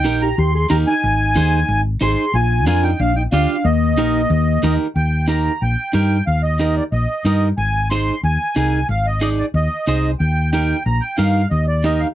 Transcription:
Already playing: D#4 G5
0.04 A#1 D#4 G4 A#4
0.22 G4 A#5
0.38 D#2 G4 C6
0.55 G#4 C6
0.70 D#2 D#4 G4 A#4 A#5
0.87 D#4 G#5
1.04 G#1
1.36 D#2 D#4 G#4 C5
1.68 G#1
2.01 G#1 D#4 G#4 C5 C6
2.34 A#1 F4 G#5
2.66 F2 D4 F4 A#4 G#5
2.83 D#4 G5
2.99 A#1 D4 F5
3.16 D#4 G5
3.32 D2 D4 F4 G4 F5
3.65 D#2 A#3 D#5
3.98 A#1 D#4 G4 A#4
4.30 D#2
4.63 D#2 D#4 G4 A#4
4.96 D#2 G5
5.28 D#4 G4 A#4 A#5
5.62 A#1 G5
5.93 G2 D#4 G4 A#4 G5
6.27 D#2 F5
6.43 D#5
6.59 D#4 G4 A#4 D#5
6.76 D5
6.92 A#1 D#5
7.25 G2 D#4 G4 A#4 D#5
7.57 G#1 G#5
7.90 D#4 G#4 C5 C6
8.23 D#2 G#5
8.56 C2 D#4 G#4 A#4 G#5
8.89 G#1 F5
9.07 D#5
9.21 D#4 G#4 D5 D#5
9.39 D5
9.54 D#2 D#5
9.87 C2 D#4 G#4 C5 D#5
10.19 D#2 G5
10.52 D#4 G4 A#4 G5
10.86 A#1 A#5
11.01 G5
11.17 G2 D#4 G4 A#4 F5
11.51 D#2 D#5
11.67 D5
11.84 D#4 G4 A#4 D#5
12.00 F5

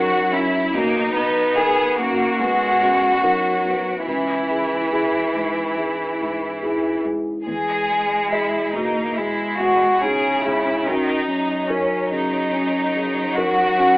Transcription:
Already playing: C#3 F#3 C#4 D#4 F#4 A#4
0.32 C#4 E4
0.73 B1 A#3 D#4
1.15 B3
1.56 D#4 G#4 A#4
1.96 F#2 A#3 F#4
2.39 G#3 B3
2.81 F#2
3.21 F#3 D#4 A#4
3.65 B3
4.06 C#2 E3 E4
4.50 G#3
4.92 E4 G#4
5.35 G#2
5.78 G#3
6.21 G#2
6.62 E4 G#4
7.05 G#3
7.46 E2 G#3 G#4
7.89 G#3
8.32 E4 G#4 D#5
8.73 B2 A#3 D#4
9.16 G#3 E4
9.58 B2 F#4
10.01 C#3 D#4 G#4
10.43 G#3 E4
10.85 F#2 D#3 D#4
11.28 F#3 C#4
11.68 C#4 D#4 A#4
12.12 C#3 D#4
12.53 C#4
12.95 C#3
13.36 D#4 F#4 A#4
13.79 C#4

